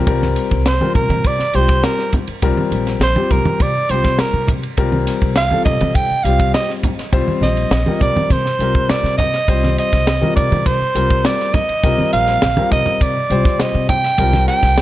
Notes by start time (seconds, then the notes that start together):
0.07 C2 G3 C4 F4 A#4, kick, hi-hat pedal, ride
0.22 snare, high conga
0.36 hi-hat pedal, ride
0.51 C2, kick, ride
0.66 C5, snare, hi-hat pedal, ride
0.81 G3 C4 F4 A#4, high conga
0.95 C3 A#4, kick, hi-hat pedal, ride, low conga
1.09 C3, ride, high conga, low conga
1.24 C3 D5, kick, hi-hat pedal, ride
1.39 muted upright bass stroke, snare
1.53 C2 G3 C4 F4 G4 C5, hi-hat pedal, ride
1.68 kick, snare, ride
1.83 A#4, snare, hi-hat pedal, ride
1.99 snare
2.12 kick, hi-hat pedal, ride, low conga
2.27 muted upright bass stroke, ride
2.42 C2 G3 C4 F4 A#4, kick, hi-hat pedal, ride
2.57 high conga
2.71 A#1, hi-hat pedal, ride
2.87 snare, ride
3.00 A#1 C5, snare, hi-hat pedal, ride
3.16 G3 C4 F4 G4, high conga
3.30 C2 A#4, kick, hi-hat pedal, ride, low conga
3.45 high conga, low conga
3.60 C3 D5, kick, hi-hat pedal, ride
3.89 C2 G3 C4 F4 G4 C5, hi-hat pedal, ride
4.04 C3, kick, snare
4.19 A#4, muted upright bass stroke, snare, hi-hat pedal, ride
4.33 C3
4.48 kick, hi-hat pedal, ride, low conga
4.63 ride
4.77 C2 G3 C4 F4 A#4, kick, hi-hat pedal, ride
4.92 high conga
5.07 snare, hi-hat pedal, ride
5.21 C2, kick, ride
5.36 F5, snare, hi-hat pedal, ride
5.51 G3 C4 F4 A4, high conga
5.65 C3 D#5, kick, hi-hat pedal, ride, low conga
5.81 C3, ride, high conga, low conga
5.95 C3 G5, kick, hi-hat pedal, ride
6.11 muted upright bass stroke
6.24 C2 G3 C4 F4 G4 F5, hi-hat pedal, ride
6.40 kick, ride
6.54 D#5, snare, hi-hat pedal, ride
6.70 snare
6.83 kick, hi-hat pedal, ride, low conga
6.98 muted upright bass stroke, snare, ride
7.12 C2 G3 C4 F4 C5, kick, hi-hat pedal, ride
7.27 muted upright bass stroke, high conga
7.41 A#1 D#5, snare, hi-hat pedal, ride, high conga
7.57 ride
7.71 A#1, snare, hi-hat pedal, ride
7.86 G3 C4 F4 A#4, high conga
8.01 C2 D5, kick, hi-hat pedal, ride, low conga
8.15 muted upright bass stroke, high conga, low conga
8.30 C3 C5, kick, hi-hat pedal, ride, high conga
8.46 snare
8.59 C2 G3 C4 F4 A#4, hi-hat pedal, ride
8.75 C3, kick
8.89 D5, muted upright bass stroke, snare, hi-hat pedal, ride
9.03 C3, snare
9.18 D#5, kick, hi-hat pedal, ride, low conga
9.34 snare, ride
9.48 C2 G3 C4 F4 C5, kick, hi-hat pedal, ride
9.63 snare, high conga
9.78 D#5, hi-hat pedal, ride
9.93 C2, kick, snare, ride
10.07 snare, hi-hat pedal, ride
10.21 G3 C4 F4 A#4, high conga
10.36 C3 D5, kick, hi-hat pedal, ride, low conga
10.52 C3, ride, high conga, low conga
10.66 C3 C5, kick, hi-hat pedal, ride
10.81 muted upright bass stroke
10.95 C2 G3 C4 F4 A#4, hi-hat pedal, ride
11.10 kick, ride
11.25 D5, snare, hi-hat pedal, ride
11.40 snare
11.54 D#5, kick, hi-hat pedal, ride, low conga
11.69 muted upright bass stroke, ride
11.83 C2 G3 C4 F4 A#4, kick, hi-hat pedal, ride
11.98 muted upright bass stroke, high conga
12.13 A#1 F5, hi-hat pedal, ride
12.28 snare, ride
12.42 A#1, snare, hi-hat pedal, ride
12.57 G3 C4 F4 A#4, high conga
12.71 C2 D#5, kick, hi-hat pedal, ride, low conga
12.86 muted upright bass stroke, low conga
13.01 C3 D5, kick, hi-hat pedal, ride
13.30 C2 G3 C4 F4 C5, hi-hat pedal, ride
13.45 C3, kick, snare
13.60 D#5, muted upright bass stroke, snare, hi-hat pedal, ride
13.75 C3
13.89 G5, kick, hi-hat pedal, ride, low conga
14.04 snare, ride
14.18 C2 G3 C4 F4 A#4, kick, hi-hat pedal, ride
14.33 snare, high conga
14.48 G5, snare, hi-hat pedal, ride
14.63 C2, kick, snare, ride
14.78 snare, hi-hat pedal, ride